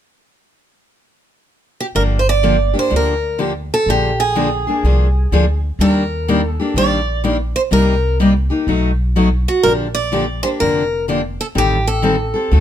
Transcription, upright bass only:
1.95 G1
2.92 D2
3.86 A#1
4.83 C2
5.32 D2
5.79 D#2
6.74 A#1
7.71 C2
8.67 B1
9.65 A#1
10.61 F1
11.55 A1
12.52 D2

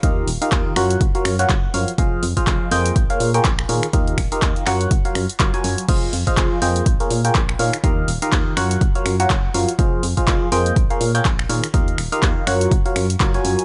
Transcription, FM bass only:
0.03 D#2
0.27 D#1
0.52 D#2
0.76 F#2
1.01 F#1
1.25 F#2
1.50 F#1
1.74 F#2
1.98 F1
2.23 F2
2.47 F1
2.71 F2
2.96 A#1
3.20 A#2
3.45 A#1
3.69 A#2
3.93 D#2
4.18 D#1
4.42 D#2
4.67 F#2
4.91 F#1
5.15 F#2
5.40 F#1
5.64 F#2
5.89 F1
6.13 F2
6.37 F1
6.62 F2
6.86 A#1
7.11 A#2
7.35 A#1
7.59 A#2
7.84 D#2
8.08 D#1
8.33 D#2
8.57 F#2
8.81 F#1
9.06 F#2
9.30 F#1
9.54 F#2
9.79 F1
10.03 F2
10.28 F1
10.52 F2
10.76 A#1
11.01 A#2
11.25 A#1
11.50 A#2
11.74 D#2
11.98 D#1
12.23 D#2
12.47 F#2
12.71 F#1
12.96 F#2
13.20 F#1
13.45 F#2

